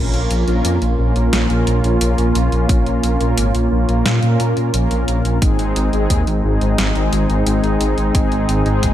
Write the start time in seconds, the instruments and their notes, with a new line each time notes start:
Already playing: detuned saw bass A#1, analog polysynth A#2 A#3 C#4 F4 A#4, analog synth pad A#3 C#4 F4
0.14 detuned saw bass A#1, closed hi-hat
0.31 detuned saw bass A#1, closed hi-hat
0.48 detuned saw bass A#1, analog polysynth A#2 A#3 C#4 F4 A#4, closed hi-hat
0.65 detuned saw bass F2, closed hi-hat
0.82 detuned saw bass A#1, closed hi-hat
0.99 detuned saw bass A#1, analog polysynth A#2 A#3 C#4 F4 A#4
1.16 detuned saw bass A#1, closed hi-hat
1.33 detuned saw bass A#1, snare, closed hi-hat
1.50 detuned saw bass A#1, analog polysynth A#2 A#3 C#4 F4 A#4, closed hi-hat
1.67 detuned saw bass A#1, closed hi-hat
1.84 detuned saw bass A#1, closed hi-hat
2.01 detuned saw bass A#1, analog polysynth A#2 A#3 C#4 F4 A#4, closed hi-hat
2.18 detuned saw bass A#1, closed hi-hat
2.35 detuned saw bass A#1, closed hi-hat
2.52 detuned saw bass A#1, closed hi-hat
2.69 detuned saw bass A#1, analog polysynth A#2 A#3 C#4 F4 A#4, kick, closed hi-hat
2.86 detuned saw bass A#1, closed hi-hat
3.03 detuned saw bass A#1, closed hi-hat
3.20 detuned saw bass A#1, analog polysynth A#2 A#3 C#4 F4 A#4, closed hi-hat
3.38 detuned saw bass G#1, closed hi-hat
3.55 detuned saw bass A#1, closed hi-hat
3.71 detuned saw bass A#1, analog polysynth A#2 A#3 C#4 F4 A#4
3.89 detuned saw bass A#1, closed hi-hat
4.06 detuned saw bass A#2, snare, closed hi-hat
4.23 analog polysynth A#2 A#3 C#4 F4 A#4, detuned saw bass A#2, closed hi-hat
4.40 detuned saw bass A#2, closed hi-hat
4.57 detuned saw bass A#2, closed hi-hat
4.74 detuned saw bass A#1, analog polysynth A#2 A#3 C#4 F4 A#4, closed hi-hat
4.91 detuned saw bass A#1, closed hi-hat
5.08 detuned saw bass A#1, closed hi-hat
5.25 detuned saw bass A#1, closed hi-hat
5.42 detuned saw bass G#1, analog polysynth G#2 G#3 C4 D#4 G#4, analog synth pad G#3 C4 D#4, kick, closed hi-hat
5.59 detuned saw bass G#1, closed hi-hat
5.76 detuned saw bass G#1, closed hi-hat
5.93 detuned saw bass G#1, analog polysynth G#2 G#3 C4 D#4 G#4, closed hi-hat
6.10 detuned saw bass D#2, kick, closed hi-hat
6.27 detuned saw bass G#1, closed hi-hat
6.44 detuned saw bass G#1, analog polysynth G#2 G#3 C4 D#4 G#4
6.61 detuned saw bass G#1, closed hi-hat
6.78 detuned saw bass G#1, snare, closed hi-hat
6.95 detuned saw bass G#1, analog polysynth G#2 G#3 C4 D#4 G#4, closed hi-hat
7.13 detuned saw bass G#1, closed hi-hat
7.30 detuned saw bass G#1, closed hi-hat
7.47 detuned saw bass G#1, analog polysynth G#2 G#3 C4 D#4 G#4, closed hi-hat
7.64 detuned saw bass G#1, closed hi-hat
7.81 detuned saw bass G#1, closed hi-hat
7.98 detuned saw bass G#1, closed hi-hat
8.15 detuned saw bass G#1, analog polysynth G#2 G#3 C4 D#4 G#4, kick, closed hi-hat
8.32 detuned saw bass G#1, closed hi-hat
8.49 detuned saw bass G#1, closed hi-hat
8.66 detuned saw bass G#1, analog polysynth G#2 G#3 C4 D#4 G#4, closed hi-hat
8.83 detuned saw bass F#1, kick, closed hi-hat, mid tom